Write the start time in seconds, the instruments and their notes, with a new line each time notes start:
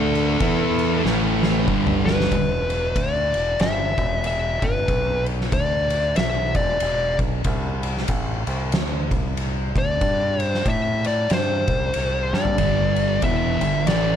Already playing: fingered electric bass D2, distorted electric guitar D3 A3 D4, lead electric guitar A4
0.15 crash
0.40 fingered electric bass E2, distorted electric guitar E3 B3 E4, kick, crash
0.79 crash
1.04 fingered electric bass A1, distorted electric guitar A2 E3 A3, snare
1.43 snare
1.67 fingered electric bass G1, distorted electric guitar G2 D3 G3, kick
1.87 mid tom
2.06 lead electric guitar B4, snare
2.20 snare
2.31 fingered electric bass E1, kick, ride
2.70 ride
2.96 fingered electric bass D2, lead electric guitar D5, kick, ride
3.34 fingered electric bass E1, ride
3.60 fingered electric bass G1, lead electric guitar E5, snare, ride
3.98 fingered electric bass E1, kick, ride
4.24 lead electric guitar E5, ride
4.62 fingered electric bass G1, lead electric guitar B4, kick, ride
4.88 fingered electric bass B1, kick, ride
5.26 ride
5.41 snare
5.52 fingered electric bass D2, lead electric guitar D5, kick, ride
5.90 ride
6.16 fingered electric bass B1, lead electric guitar E5, snare, ride
6.55 fingered electric bass E1, lead electric guitar D5, kick, ride
6.80 fingered electric bass E1, ride
7.19 fingered electric bass B1, kick, ride
7.44 fingered electric bass C2, kick, ride
7.83 ride
7.97 snare
8.08 fingered electric bass A1, kick, ride
8.47 fingered electric bass C2, ride
8.72 fingered electric bass D2, snare, ride
9.11 fingered electric bass C2, kick, ride
9.37 ride
9.75 fingered electric bass D2, lead electric guitar D5, kick, ride
10.01 fingered electric bass G2, kick, ride
10.40 lead electric guitar C5, ride
10.54 snare
10.66 fingered electric bass A2, lead electric guitar E5, kick, ride
11.04 lead electric guitar D5, ride
11.30 fingered electric bass G2, lead electric guitar C5, snare, ride
11.68 fingered electric bass C2, kick, ride
11.94 fingered electric bass C2, ride
12.33 fingered electric bass G2, lead electric guitar D5, snare
12.45 floor tom
12.58 fingered electric bass G1, distorted electric guitar G2 D3 G3, kick, ride
12.96 ride
13.22 fingered electric bass E1, distorted electric guitar E2 B2 E3, lead electric guitar E5, kick, ride
13.61 fingered electric bass G1, distorted electric guitar G2 D3, ride
13.87 fingered electric bass A1, distorted electric guitar A2 E3 A3, lead electric guitar D5, snare, ride